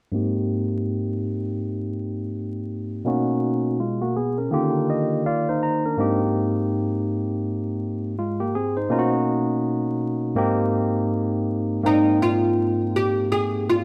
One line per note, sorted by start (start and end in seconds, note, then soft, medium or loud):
0.12 3.01 G#2 medium
0.12 3.02 A#3 medium
0.12 3.02 C4 medium
0.12 3.02 D#4 medium
0.12 3.03 G4 medium
3.05 4.48 B2 medium
3.05 3.77 A#3 medium
3.05 3.78 C#4 medium
3.05 3.78 D#4 medium
3.05 3.78 F#4 medium
3.80 4.01 G#3 soft
3.80 4.00 F4 medium
4.02 4.15 A#3 medium
4.02 4.15 F#4 medium
4.16 4.37 B3 medium
4.16 4.37 G#4 medium
4.38 4.73 C#4 soft
4.38 4.73 A#4 soft
4.51 5.24 D3 medium
4.51 5.95 D#3 medium
4.51 5.95 A#3 medium
4.51 5.24 F4 medium
4.51 5.25 G4 medium
4.90 5.23 D#5 medium
5.26 5.47 F4 soft
5.26 5.47 D5 medium
5.26 5.60 F5 medium
5.49 5.83 D#4 medium
5.49 5.83 C5 medium
5.63 5.96 A#5 medium
5.86 6.20 D4 soft
5.86 6.19 A#4 medium
5.97 8.87 G#2 medium
5.97 8.14 A#3 medium
5.97 8.14 C4 medium
5.97 8.14 D#4 medium
5.97 8.15 G4 medium
8.19 8.40 G#3 soft
8.19 8.39 F4 medium
8.40 8.54 A#3 medium
8.40 8.54 G4 medium
8.55 8.76 C4 soft
8.55 8.76 G#4 medium
8.77 8.90 D#4 soft
8.77 9.11 C5 medium
8.89 10.34 B2 medium
8.89 10.34 A#3 medium
8.89 10.34 C#4 medium
8.89 10.35 D#4 medium
8.89 9.00 F4 medium
8.99 10.38 F#4 medium
10.35 11.79 G#2 medium
10.35 11.80 A#3 medium
10.35 11.80 C4 medium
10.35 11.81 D#4 medium
10.35 11.81 G4 medium
11.83 13.84 G#2 medium
11.83 13.84 A#3 medium
11.83 13.84 C4 medium
11.83 13.84 D#4 medium
11.83 12.22 D#4 medium
11.83 13.84 G5 medium
12.22 12.96 F4 medium
12.96 13.31 G4 medium
13.32 13.65 G#4 medium
13.70 13.84 F4 medium